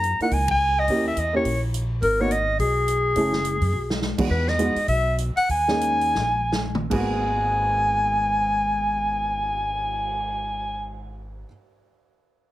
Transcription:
Already playing: F#2 A#5
0.04 closed hi-hat
0.19 A#3 D#4 F4 A#4 F#5, muted upright bass stroke, open hi-hat
0.31 C#2 G#5, kick, open hi-hat
0.48 G#5, kick, ride
0.79 D#5
0.88 D#2 A#3 C#4 E4 G4, kick, open hi-hat
1.08 E5
1.16 E2 D#5, closed hi-hat
1.33 A#3 C#4 E4 G4 C#5
1.45 A#1, kick, open hi-hat
1.74 closed hi-hat
2.02 G#1 A#4, kick, open hi-hat
2.20 A#3 B3 D#4 F#4 C#5
2.31 D#5, closed hi-hat
2.59 B1 G#4, kick, open hi-hat
2.88 closed hi-hat
3.16 F#1 A3 C#4 E4 G#4, kick, open hi-hat
3.33 snare
3.45 closed hi-hat
3.61 F#2, open hi-hat
3.72 B1
3.90 snare
4.02 snare
4.18 E2 G#3 B3 D#4 F#4, muted upright bass stroke, kick, crash
4.30 E2 B4, kick
4.47 D#5, snare
4.58 G#3 B3 D#4 F#4, closed hi-hat
4.75 muted upright bass stroke, open hi-hat
4.88 B1 E5, kick, open hi-hat
5.18 closed hi-hat
5.36 F#5, muted upright bass stroke, open hi-hat
5.49 D#2 G#5, kick, open hi-hat
5.68 A#3 C#4 D#4 G#4, snare
5.81 closed hi-hat
6.01 open hi-hat
6.15 A#1, snare
6.52 snare
6.75 mid tom
6.90 G#1 G#2 G#3 A#3 B3 F#4 G#5, kick, crash
7.16 cymbal swell

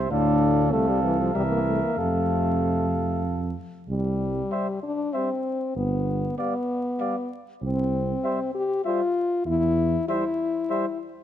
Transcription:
Already playing: C3 C5 E5
0.10 D2 A2 D4 A4 F5
0.72 C2 C3 A3 A4 F5
0.88 G3
1.03 E3
1.20 F3
1.35 C2 E3 G3 A#4 E5
1.51 A#3
1.66 A3
1.83 A#3
1.98 F2 C3 A3 A4 F5
3.89 C2 G3
4.51 G3 C5 E5
4.83 D4
5.13 G3 C4 C5 E5
5.75 G1 B3
6.38 G3 B3 D5 F5
6.99 G3 D5 F5
7.62 C2 C4
8.23 G3 C5 E5
8.54 G4
8.85 G3 F4 C5 E5
9.46 E2 E4
10.08 G3 E4 C5 E5
10.70 G3 C5 E5

